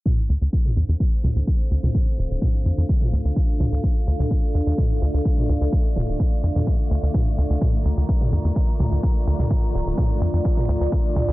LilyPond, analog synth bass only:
\new Staff \with { instrumentName = "Analog synth bass" } { \clef bass \time 4/4 \key d \minor \tempo 4 = 127 r8 d,16 d,16 r8 e,16 e,16 r8 d,16 d,16 r8 d,16 d,16 | r8 d,,16 d,,16 r8 f,16 f,16 r8 d,16 d,16 r8 d,16 d,16 | r8 d,16 d,16 r8 e,16 e,16 r8 d,16 d,16 r8 d,16 d,16 | r8 d,,16 d,,16 r8 f,16 f,16 r8 d,16 d,16 r8 d,16 d,16 |
r8 d,16 d,16 r8 e,16 e,16 r8 d,16 d,16 r8 d,16 d,16 | r8 d,,16 d,,16 r8 f,16 f,16 r8 d,16 d,16 r8 d,16 d,16 | }